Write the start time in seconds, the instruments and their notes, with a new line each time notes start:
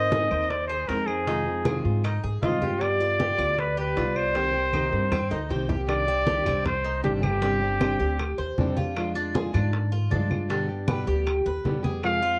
Already playing: upright bass G#2, nylon-string guitar C4 D#4 A#4, cuban tres C5, trumpet D#5
0.11 nylon-string guitar G#3 C4 D#4 A#4, cuban tres G#4, high bongo, high conga
0.30 upright bass D#2, nylon-string guitar C4 D#4 A#4, cuban tres C5, high bongo, high conga, claves
0.50 trumpet D5, muted nylon-string guitar stroke, high bongo, high conga
0.68 cuban tres G#4, trumpet C5, high bongo, high conga
0.88 upright bass F2, nylon-string guitar G#3 C4 D#4 A#4, trumpet A#4, cuban tres C5, high bongo, low bongo, high conga
1.07 nylon-string guitar C4 D#4 A#4, trumpet G#4, high conga, claves
1.26 nylon-string guitar C3 D#3 G#3 C4 F4, cuban tres D#4, high bongo, high conga
1.46 nylon-string guitar G#3 C4, high conga
1.65 nylon-string guitar C3 D#3 G#3 C4 F4, cuban tres G#4, high bongo, high conga, claves
1.84 upright bass G#2, nylon-string guitar G#3 C4 F4, high bongo, high conga
2.04 cuban tres D#4, muted nylon-string guitar stroke, high bongo, high conga, claves
2.23 upright bass G#2, cuban tres G#4, high bongo, high conga
2.42 upright bass G2, nylon-string guitar C3 D#3 G#3 C4 F4, trumpet F4, cuban tres D#5, high bongo, low bongo, high conga
2.61 nylon-string guitar G#3 C4 F4, cuban tres G4, high bongo, high conga
2.80 nylon-string guitar G3 B3 F4, trumpet D5, high bongo, high conga, claves
3.00 nylon-string guitar B3 F4, cuban tres D5, high bongo, high conga
3.20 nylon-string guitar G3 B3 F4, cuban tres G4, high bongo, high conga
3.38 upright bass D2, nylon-string guitar B3 F4, cuban tres D5, high bongo, high conga, claves
3.57 trumpet B4, muted nylon-string guitar stroke, high bongo, high conga
3.77 cuban tres G4, trumpet B4, high bongo, high conga
3.96 upright bass C2, nylon-string guitar G3 B3 F4, cuban tres D5, high bongo, low bongo, high conga
4.16 nylon-string guitar B3 F4, trumpet C5, high conga, claves
4.34 nylon-string guitar C3 D#3 A#3 C4 G4, cuban tres C4, high bongo, high conga
4.53 nylon-string guitar A#3 C4 G4, high conga
4.73 nylon-string guitar C3 D#3 A#3 C4 G4, cuban tres D#4, high bongo, high conga, claves
4.91 upright bass G2, nylon-string guitar A#3 C4 G4, high bongo
5.11 cuban tres C4, muted nylon-string guitar stroke, high bongo, low conga, claves
5.31 upright bass D2, cuban tres D#4, high bongo
5.49 upright bass C2, nylon-string guitar C3 D#3 A#3 C4 G4, cuban tres C5, low bongo
5.69 nylon-string guitar A#3 C4 G4, cuban tres G4, low bongo, low conga
5.87 nylon-string guitar C3 D#3 G3 D4 G4, trumpet D5, high bongo, high conga, claves
6.08 nylon-string guitar G3, cuban tres C4, high conga
6.27 nylon-string guitar C3 D#3 G3 D4 G4, cuban tres G4, high bongo, high conga
6.45 upright bass C2, nylon-string guitar G3 D4 G4, cuban tres C4, high bongo, low conga, claves
6.65 trumpet C5, muted nylon-string guitar stroke, high bongo, high conga, low conga
6.84 cuban tres D#4, high bongo, high conga
7.03 upright bass G1, nylon-string guitar C3 D#3 G3 D4 G4, cuban tres C4, trumpet G4, high bongo, low bongo, high conga
7.22 nylon-string guitar G3 D4 G4, trumpet G4, high bongo, high conga, claves
7.41 nylon-string guitar C3 G3 C4 D4 G4, cuban tres C4, high bongo
7.62 nylon-string guitar C4 D4 G4, high conga
7.80 nylon-string guitar C3 G3 C4 D4 G4, cuban tres C5, high bongo, high conga, claves
8.00 upright bass D2, nylon-string guitar C4 D4 G4, cuban tres G4, high bongo, high conga
8.19 muted nylon-string guitar stroke, high bongo, high conga, claves
8.38 upright bass D#2, cuban tres C5, high bongo, high conga
8.58 upright bass F2, nylon-string guitar C3 G3 C4 D4 G4, high bongo, low bongo, high conga
8.77 nylon-string guitar C4 D4 G4, cuban tres F4, high bongo, high conga
8.96 nylon-string guitar F3 G#3 D4 F4, high bongo, high conga, claves
9.15 nylon-string guitar G#3 D4 F4, cuban tres D4, high conga
9.34 nylon-string guitar F3 G#3 D4 F4, cuban tres G#4, high bongo, high conga
9.53 upright bass G#2, nylon-string guitar G#3 D4 F4, cuban tres D4, high bongo, low conga, claves
9.72 muted nylon-string guitar stroke, high bongo, high conga
9.92 cuban tres F4, high bongo, high conga
10.10 upright bass G2, nylon-string guitar F3 G#3 D4 F4, cuban tres D4, high bongo, low bongo, high conga
10.30 nylon-string guitar G#3 D4 F4, high bongo, high conga, claves
10.49 nylon-string guitar B2 D3 G3 B3 G4, cuban tres D4, high bongo, high conga
10.69 nylon-string guitar G3 B3 G4, high conga
10.88 nylon-string guitar B2 D3 G3 B3 G4, cuban tres B4, high bongo, high conga, claves
11.07 upright bass D2, nylon-string guitar G3 B3 G4, cuban tres G4, high bongo, high conga
11.26 muted nylon-string guitar stroke, high bongo, high conga, claves
11.46 upright bass D#2, cuban tres B4, high bongo, high conga
11.64 upright bass F2, nylon-string guitar B2 D3 G3 B3 G4, high bongo, low bongo, high conga
11.83 nylon-string guitar G3 B3 G4, cuban tres G#4, high bongo, high conga
12.02 nylon-string guitar C3 F3 G#3 C4 F4, trumpet F5, high bongo, high conga, claves
12.22 nylon-string guitar G#3 C4 F4, cuban tres F4, high conga